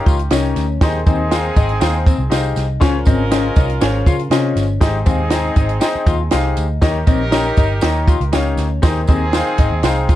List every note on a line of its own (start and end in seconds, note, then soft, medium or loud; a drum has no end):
0.00 0.53 C#4 medium
0.00 0.13 D#4 medium
0.00 0.54 D#4 medium
0.00 0.13 G4 medium
0.00 0.53 G4 loud
0.00 0.13 A#4 medium
0.00 0.14 C#5 medium
0.00 0.13 F5 medium
0.06 0.28 C#2 medium
0.06 0.20 F4 medium
0.06 kick medium
0.06 closed hi-hat medium
0.06 tambourine medium
0.19 closed hi-hat soft
0.30 0.53 C2 medium
0.30 0.79 C#4 medium
0.30 0.64 D#4 medium
0.30 0.64 G4 medium
0.30 0.64 A#4 medium
0.30 0.64 C#5 medium
0.30 0.64 D#5 medium
0.30 snare loud
0.30 closed hi-hat loud
0.30 tambourine loud
0.56 0.78 D2 medium
0.56 snare soft
0.56 closed hi-hat medium
0.56 tambourine medium
0.81 1.03 D#2 loud
0.81 1.53 D#3 medium
0.81 2.53 C4 medium
0.81 2.53 D#4 medium
0.81 0.98 D#4 loud
0.81 0.98 G4 medium
0.81 2.53 G#4 loud
0.81 0.98 G#4 medium
0.81 0.98 C5 loud
0.81 0.98 D#5 loud
0.81 kick loud
0.81 snare loud
0.81 closed hi-hat medium
0.81 tambourine medium
1.06 1.49 D#2 loud
1.06 1.21 C4 medium
1.06 1.23 D#4 medium
1.06 1.23 G4 medium
1.06 1.23 G#4 medium
1.06 1.23 C5 medium
1.06 1.23 D#5 medium
1.06 kick loud
1.06 closed hi-hat medium
1.06 tambourine medium
1.31 1.63 D#4 medium
1.31 1.63 G#4 medium
1.31 1.63 C5 medium
1.31 1.64 F5 medium
1.31 1.63 G5 medium
1.31 snare loud
1.31 closed hi-hat medium
1.31 tambourine medium
1.56 1.78 G#1 medium
1.56 1.71 D#4 medium
1.56 kick medium
1.56 closed hi-hat medium
1.56 tambourine medium
1.69 closed hi-hat soft
1.80 2.13 D#2 medium
1.80 2.13 D#4 medium
1.80 2.13 G#4 medium
1.80 2.13 C5 medium
1.80 2.13 F5 medium
1.80 2.13 G5 medium
1.80 snare loud
1.80 closed hi-hat medium
1.80 tambourine medium
2.06 2.21 C4 medium
2.06 kick medium
2.06 closed hi-hat medium
2.06 tambourine medium
2.18 2.29 C2 medium
2.30 2.53 C2 medium
2.30 2.63 D#4 medium
2.30 2.79 D#4 medium
2.30 2.63 G4 medium
2.30 2.63 G#4 medium
2.30 2.63 C5 medium
2.30 2.63 F5 medium
2.30 snare loud
2.30 closed hi-hat medium
2.30 tambourine loud
2.56 2.78 C2 medium
2.56 snare soft
2.56 closed hi-hat medium
2.56 tambourine medium
2.80 3.03 C#2 loud
2.80 3.52 C#3 medium
2.80 2.97 C#4 loud
2.80 2.95 C#4 medium
2.80 4.53 C#4 medium
2.80 2.97 F4 medium
2.80 4.53 F4 medium
2.80 2.97 G#4 loud
2.80 4.53 A#4 loud
2.80 2.97 C5 medium
2.80 2.97 C#5 loud
2.80 kick loud
2.80 snare loud
2.80 closed hi-hat medium
2.80 tambourine medium
3.05 3.49 G#1 medium
3.05 3.20 C4 loud
3.05 3.22 C#4 medium
3.05 3.22 F4 medium
3.05 3.22 G#4 medium
3.05 3.22 C5 medium
3.05 3.22 D#5 medium
3.05 kick medium
3.05 closed hi-hat medium
3.05 tambourine medium
3.30 3.63 C#4 medium
3.30 3.46 C#4 medium
3.30 3.63 F4 medium
3.30 3.63 G#4 medium
3.30 3.63 C5 medium
3.30 3.63 D#5 loud
3.30 snare loud
3.30 closed hi-hat medium
3.30 tambourine loud
3.56 3.78 C2 medium
3.56 3.71 D#4 medium
3.56 kick medium
3.56 closed hi-hat medium
3.56 tambourine medium
3.70 closed hi-hat soft
3.80 4.03 G#1 loud
3.80 4.13 C#4 medium
3.80 4.13 F4 medium
3.80 4.13 G#4 medium
3.80 4.14 C5 medium
3.80 4.13 C#5 medium
3.80 snare loud
3.80 closed hi-hat loud
3.80 tambourine medium
4.06 4.28 C#3 loud
4.06 4.21 F4 medium
4.06 kick medium
4.06 closed hi-hat medium
4.06 tambourine medium
4.19 closed hi-hat medium
4.30 4.52 C3 medium
4.30 4.63 C#4 medium
4.30 4.78 C#4 medium
4.30 4.63 F4 medium
4.30 4.63 G#4 medium
4.30 4.64 C5 medium
4.30 4.63 D#5 medium
4.30 snare loud
4.30 closed hi-hat medium
4.30 tambourine medium
4.56 4.77 G1 medium
4.56 snare soft
4.56 closed hi-hat medium
4.56 tambourine medium
4.81 5.03 G#1 loud
4.81 5.52 G#2 medium
4.81 6.53 C4 medium
4.81 4.97 D#4 loud
4.81 6.53 D#4 medium
4.81 4.97 G4 loud
4.81 6.53 G#4 loud
4.81 4.97 G#4 medium
4.81 4.97 C5 medium
4.81 4.97 D#5 loud
4.81 kick loud
4.81 snare loud
4.81 closed hi-hat medium
4.81 tambourine medium
5.05 5.49 D#2 loud
5.05 5.20 C4 medium
5.05 5.22 D#4 medium
5.05 5.22 G4 medium
5.05 5.22 G#4 medium
5.05 5.22 C5 medium
5.05 5.22 F5 medium
5.05 kick medium
5.05 closed hi-hat medium
5.05 tambourine medium
5.30 5.63 D#4 medium
5.30 5.63 G#4 medium
5.30 5.63 C5 medium
5.30 5.63 D#5 loud
5.30 5.63 G5 medium
5.30 snare loud
5.30 closed hi-hat loud
5.30 tambourine loud
5.56 5.78 G#1 medium
5.56 5.70 D#4 medium
5.56 kick medium
5.56 closed hi-hat medium
5.56 tambourine medium
5.69 closed hi-hat medium
5.80 6.13 D#4 loud
5.80 6.13 G#4 medium
5.80 6.14 C5 medium
5.80 6.14 D#5 loud
5.80 6.13 G5 medium
5.80 snare loud
5.80 closed hi-hat loud
5.80 tambourine medium
5.95 muted picked electric bass stroke soft
6.06 6.28 D#2 loud
6.06 6.21 F4 medium
6.06 kick medium
6.06 closed hi-hat medium
6.06 tambourine medium
6.31 6.54 C2 loud
6.31 6.64 D#4 medium
6.31 6.79 D#4 medium
6.31 6.64 G4 medium
6.31 6.64 G#4 medium
6.31 6.64 C5 medium
6.31 6.64 F5 loud
6.31 snare loud
6.31 closed hi-hat loud
6.31 tambourine loud
6.57 6.79 D2 medium
6.57 closed hi-hat medium
6.57 tambourine medium
6.81 7.04 D#2 loud
6.81 7.53 D#3 medium
6.81 6.98 D#4 loud
6.81 8.54 D#4 loud
6.81 6.97 D#4 medium
6.81 6.98 G4 loud
6.81 8.54 G4 loud
6.81 6.98 A#4 medium
6.81 8.55 A#4 loud
6.81 6.98 C#5 medium
6.81 6.98 D#5 loud
6.81 kick loud
6.81 snare loud
6.81 closed hi-hat medium
6.81 tambourine medium
7.06 7.50 A#1 medium
7.06 7.21 C4 loud
7.06 7.23 D#4 medium
7.06 7.23 G4 medium
7.06 7.23 A#4 medium
7.06 7.23 C#5 medium
7.06 7.23 D#5 medium
7.06 kick loud
7.06 closed hi-hat medium
7.06 tambourine medium
7.31 7.46 C#4 medium
7.31 7.64 D#4 medium
7.31 7.64 G4 medium
7.31 7.64 A#4 medium
7.31 7.64 C#5 medium
7.31 7.64 D#5 loud
7.31 snare loud
7.31 closed hi-hat medium
7.31 tambourine loud
7.57 7.79 G1 medium
7.57 7.71 D#4 medium
7.57 kick medium
7.57 closed hi-hat medium
7.57 tambourine medium
7.81 8.15 D#2 loud
7.81 8.14 D#4 medium
7.81 8.14 G4 medium
7.81 8.15 A#4 medium
7.81 8.14 C#5 medium
7.81 8.15 D#5 loud
7.81 snare loud
7.81 closed hi-hat loud
7.81 tambourine medium
8.08 8.22 F4 medium
8.08 kick medium
8.08 closed hi-hat medium
8.08 tambourine medium
8.21 8.31 C#2 medium
8.21 closed hi-hat soft
8.32 8.55 C#2 medium
8.32 8.81 C#4 medium
8.32 8.65 D#4 medium
8.32 8.65 G4 medium
8.32 8.65 A#4 medium
8.32 8.65 C#5 medium
8.32 8.65 F5 medium
8.32 snare loud
8.32 closed hi-hat medium
8.32 tambourine medium
8.57 8.79 D2 medium
8.57 snare soft
8.57 closed hi-hat medium
8.57 tambourine medium
8.82 9.05 D#2 loud
8.82 9.55 D#3 medium
8.82 10.15 C4 loud
8.82 8.99 D#4 loud
8.82 10.15 D#4 medium
8.82 8.99 G4 loud
8.82 8.99 G#4 medium
8.82 10.15 G#4 loud
8.82 8.99 C5 medium
8.82 8.99 D#5 loud
8.82 kick loud
8.82 snare loud
8.82 closed hi-hat medium
8.82 tambourine medium
9.07 9.41 D#2 loud
9.07 9.23 C4 medium
9.07 9.24 D#4 medium
9.07 9.25 G4 medium
9.07 9.24 G#4 medium
9.07 9.25 C5 medium
9.07 9.25 D#5 medium
9.07 kick medium
9.07 closed hi-hat medium
9.07 tambourine medium
9.33 9.66 D#4 medium
9.33 9.66 G#4 medium
9.33 9.67 C5 medium
9.33 9.67 F5 loud
9.33 9.66 G5 medium
9.33 snare loud
9.33 closed hi-hat medium
9.33 tambourine loud
9.58 9.69 G#1 medium
9.58 9.73 D#4 medium
9.58 kick medium
9.58 closed hi-hat medium
9.58 tambourine medium
9.71 9.82 D#2 medium
9.83 10.15 C2 loud
9.83 10.15 D#4 medium
9.83 10.15 G#4 medium
9.83 10.15 C5 medium
9.83 10.15 F5 loud
9.83 10.15 G5 medium
9.83 snare loud
9.83 closed hi-hat medium
9.83 tambourine medium
10.09 10.15 F4 medium
10.09 kick medium
10.09 closed hi-hat medium
10.09 tambourine medium